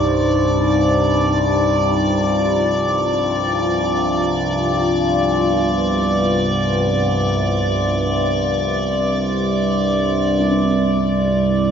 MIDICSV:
0, 0, Header, 1, 4, 480
1, 0, Start_track
1, 0, Tempo, 500000
1, 11243, End_track
2, 0, Start_track
2, 0, Title_t, "Synth drone"
2, 0, Program_c, 0, 95
2, 0, Note_on_c, 0, 74, 72
2, 10002, Note_off_c, 0, 74, 0
2, 10013, Note_on_c, 0, 74, 78
2, 11243, Note_off_c, 0, 74, 0
2, 11243, End_track
3, 0, Start_track
3, 0, Title_t, "Ambient pad"
3, 0, Program_c, 1, 92
3, 0, Note_on_c, 1, 63, 83
3, 0, Note_on_c, 1, 67, 78
3, 0, Note_on_c, 1, 72, 74
3, 0, Note_on_c, 1, 74, 65
3, 1464, Note_off_c, 1, 63, 0
3, 1468, Note_on_c, 1, 65, 84
3, 1471, Note_off_c, 1, 72, 0
3, 4433, Note_on_c, 1, 71, 82
3, 9993, Note_off_c, 1, 74, 0
3, 9998, Note_off_c, 1, 71, 0
3, 10004, Note_off_c, 1, 65, 0
3, 10009, Note_off_c, 1, 67, 0
3, 11243, End_track
4, 0, Start_track
4, 0, Title_t, "Synth drone"
4, 0, Program_c, 2, 95
4, 0, Note_on_c, 2, 36, 67
4, 0, Note_on_c, 2, 43, 64
4, 10008, Note_off_c, 2, 43, 0
4, 10015, Note_off_c, 2, 36, 0
4, 10020, Note_on_c, 2, 43, 79
4, 10027, Note_on_c, 2, 36, 75
4, 11243, Note_off_c, 2, 36, 0
4, 11243, Note_off_c, 2, 43, 0
4, 11243, End_track
0, 0, End_of_file